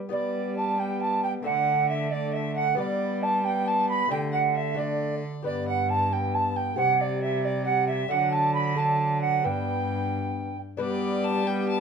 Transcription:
0.09 G3 B3 G4 D5
0.13 G3
0.57 A5
0.79 B3 G5
1.02 A5
1.24 G5
1.43 D3 A3 A4 D5 F#5
1.89 E5
2.11 A3 D5
2.34 E5
2.56 F#5
2.75 G3 B3 G4 D5
2.79 G3 D5
3.23 A5
3.45 B3 G5
3.66 A5
3.89 B5
4.08 D3 A3 G4 D5 G5
4.12 D3
4.33 F#5
4.56 E5
4.74 A3 F#4 D5
4.79 D5
5.42 G2 B3 G4 B4 D5
5.47 G2
5.68 F#5
5.90 A5
6.12 B3 G5
6.34 A5
6.56 G5
6.76 C3 G3 G4 C5 F#5
7.01 D5
7.23 E5
7.44 D5
7.66 F#5
7.87 E5
8.08 D3 F#3 D4 A4 F#5
8.31 A5
8.54 B5
8.75 F#3 D4 A4 A5
9.21 F#5
9.43 G2 B3 D4 B4 G5
10.77 G3 B3 D4 G4 B4 D5
11.24 A5
11.45 B3 G4 G5
11.69 A5

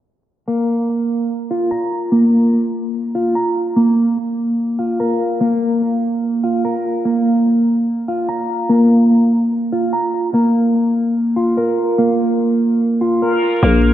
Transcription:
0.48 A#3
1.51 F4
1.71 A#5
2.12 A#3
3.15 F4
3.35 A#5
3.76 A#3
4.79 F4
5.00 A#4
5.41 A#3
6.44 F4
6.65 A#4
7.05 A#3
8.08 F4
8.29 A#5
8.69 A#3
9.72 F4
9.93 A#5
10.34 A#3
11.36 F4
11.57 A#4
11.98 A#3
13.01 F4
13.22 A#4
13.63 A#1 A#3

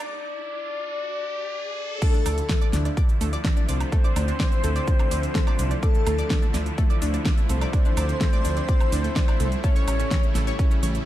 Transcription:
Already playing: D5, riser
2.02 D3 F3 A3 D4 E4 A4, kick, closed hi-hat, crash, shaker
2.14 D4, closed hi-hat, shaker
2.26 D2 D5, open hi-hat, high woodblock, shaker
2.38 closed hi-hat, shaker
2.49 A3, kick, snare, closed hi-hat, shaker
2.62 D5, closed hi-hat, shaker
2.73 D2 D4, snare, open hi-hat, shaker
2.85 D4, closed hi-hat, shaker
2.97 D5, kick, closed hi-hat, shaker
3.09 closed hi-hat, shaker
3.21 D2 A3, open hi-hat, shaker
3.33 D5, closed hi-hat, shaker
3.45 D4, kick, snare, closed hi-hat, shaker
3.57 D4, closed hi-hat, shaker
3.69 C2 C5 D5, open hi-hat, shaker
3.81 closed hi-hat, high woodblock, shaker
3.92 A3, kick, closed hi-hat, shaker
4.04 D5, closed hi-hat, shaker
4.16 D2 D4, open hi-hat, high woodblock, shaker
4.28 D4, closed hi-hat, shaker
4.40 D5, kick, snare, closed hi-hat, shaker
4.52 closed hi-hat, shaker
4.64 D2 A3, open hi-hat, shaker
4.76 D5, closed hi-hat, shaker
4.88 D4, kick, closed hi-hat, shaker
4.99 D4, closed hi-hat, high woodblock, shaker
5.11 D2 D5, open hi-hat, shaker
5.23 closed hi-hat, shaker
5.35 A3, kick, snare, closed hi-hat, shaker
5.47 D5, closed hi-hat, high woodblock, shaker
5.59 C2 D4, open hi-hat, shaker
5.71 D4, closed hi-hat, shaker
5.83 A4 D5, kick, closed hi-hat, shaker
5.95 closed hi-hat, shaker
6.07 D2 A3, open hi-hat, high woodblock, shaker
6.19 D5, closed hi-hat, shaker
6.30 D4, kick, snare, closed hi-hat, shaker
6.42 D4, closed hi-hat, shaker
6.54 D2 D5, snare, open hi-hat, shaker
6.66 closed hi-hat, shaker
6.78 A3, kick, closed hi-hat, shaker
6.90 D5, closed hi-hat, shaker
7.02 D2 D4, open hi-hat, shaker
7.14 D4, closed hi-hat, shaker
7.25 D5, kick, snare, closed hi-hat, shaker
7.38 closed hi-hat, shaker
7.49 C2 A3 C5, open hi-hat, shaker
7.61 D5, closed hi-hat, high woodblock, shaker
7.73 D4, kick, closed hi-hat, shaker
7.85 D4, closed hi-hat, shaker
7.97 D2 D5, open hi-hat, high woodblock, shaker
8.09 closed hi-hat, shaker
8.21 A3, kick, snare, closed hi-hat, shaker
8.33 D5, closed hi-hat, shaker
8.45 D2 D4, open hi-hat, shaker
8.57 D4, closed hi-hat, shaker
8.69 D5, kick, closed hi-hat, shaker
8.80 closed hi-hat, high woodblock, shaker
8.92 D2 D4, open hi-hat, shaker
9.04 A3, closed hi-hat, shaker
9.16 D4, kick, snare, closed hi-hat, shaker
9.28 D4, closed hi-hat, high woodblock, shaker
9.40 C2 A3, open hi-hat, shaker
9.52 closed hi-hat, shaker
9.64 C#3 G3 A3 C#5, kick, closed hi-hat, shaker
9.76 C#5, closed hi-hat, shaker
9.88 A1 C#4, open hi-hat, high woodblock, shaker
10.00 C#4, closed hi-hat, shaker
10.11 C#5, kick, snare, closed hi-hat, shaker
10.23 closed hi-hat, shaker
10.35 A1 A3, snare, open hi-hat, shaker
10.47 C#5, closed hi-hat, shaker
10.59 C#4, kick, closed hi-hat, shaker
10.71 C#4, closed hi-hat, shaker
10.83 A1 C#5, open hi-hat, shaker
10.95 closed hi-hat, shaker

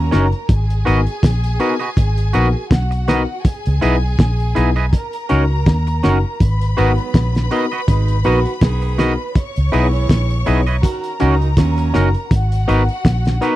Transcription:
Already playing: A#2 F#3 C#4 A#4 A#5
0.11 F#1 C#4 D#4 F#4 A#4, snare, closed hi-hat
0.32 closed hi-hat
0.49 G#1 G#4 G#5, kick, closed hi-hat
0.70 closed hi-hat
0.85 G#1 B3 D#4 F#4 A#4 B4 D#5, closed hi-hat
1.07 closed hi-hat
1.23 A#1, kick, snare, closed hi-hat
1.44 closed hi-hat
1.60 B3 D#4 F#4 A#4 B4 D#5, closed hi-hat
1.79 F#4 B4 D#5, closed hi-hat
1.97 G#1, kick, closed hi-hat
2.17 closed hi-hat
2.33 A#1 B3 D#4 F#4 A#4 B4 D#5, closed hi-hat
2.71 B1 F#4 F#5, kick, snare, closed hi-hat
2.91 muted clean electric guitar stroke, closed hi-hat
3.08 B3 D#4 F#4 A#4 B4 D#5, snare, closed hi-hat
3.45 G#4 G#5, kick, closed hi-hat
3.66 C#2, closed hi-hat
3.81 B1 B3 D#4 E4 G#4 B4 D#5, closed hi-hat
4.19 A#1, kick, snare, closed hi-hat
4.40 closed hi-hat
4.55 B1 B3 D#4 E4 G#4 B4 D#5, closed hi-hat
4.76 E4 B4 D#5, closed hi-hat
4.93 A#4 A#5, kick, closed hi-hat
5.13 closed hi-hat
5.29 C#2 C#4 D#4 F#4 A#4, closed hi-hat
5.51 F#4
5.66 D#2, kick, snare, closed hi-hat
5.87 muted clean electric guitar stroke, closed hi-hat
6.03 F#1 C#4 D#4 F#4 A#4, snare, closed hi-hat
6.40 G#1 B4 B5, kick, closed hi-hat
6.61 closed hi-hat
6.77 G#1 G#2 F#3 B3 D#4 F#4 A#4 B4 D#5, closed hi-hat
6.98 closed hi-hat
7.14 A#1, kick, snare, closed hi-hat
7.35 snare, closed hi-hat
7.51 B3 D#4 F#4 A#4 B4 D#5, closed hi-hat
7.71 F#4 B4 D#5, closed hi-hat
7.88 G#1 B2 G#3 D#4, kick, closed hi-hat
8.08 closed hi-hat
8.24 A#1 D#3 B3 D#4 F#4 A#4 B4 D#5, closed hi-hat
8.46 F#4 A#4, closed hi-hat
8.60 B1 D#3 B3 G#4, kick, snare, closed hi-hat
8.82 muted clean electric guitar stroke, closed hi-hat
8.98 B3 D#4 F#4 A#4 B4 D#5, snare, closed hi-hat
9.35 C#5 C#6, kick, closed hi-hat
9.56 C#2, closed hi-hat
9.72 B1 G#3 B3 D#4 E4 G#4 B4 D#5, closed hi-hat
9.93 closed hi-hat
10.09 A#1, kick, snare, closed hi-hat
10.30 closed hi-hat
10.46 B1 B3 D#4 E4 G#4 B4 D#5, closed hi-hat
10.66 E4 B4 D#5, closed hi-hat
10.82 D#3 C#4 F#4 A#4 A#5, kick, closed hi-hat
11.04 closed hi-hat
11.19 C#2 A#2 F#3 C#4 D#4 F#4 A#4, closed hi-hat
11.42 closed hi-hat
11.56 D#2 A#2 F#3 C#4, kick, snare, closed hi-hat
11.78 muted clean electric guitar stroke, closed hi-hat
11.93 F#1 C#4 D#4 F#4 A#4, snare, closed hi-hat
12.14 closed hi-hat
12.31 G#1 F#4 F#5, kick, closed hi-hat
12.52 closed hi-hat
12.67 G#1 B3 D#4 F#4 A#4 B4, closed hi-hat
12.89 closed hi-hat
13.05 A#1, kick, snare, closed hi-hat
13.25 snare, closed hi-hat
13.41 B3 D#4 F#4 A#4 B4, closed hi-hat

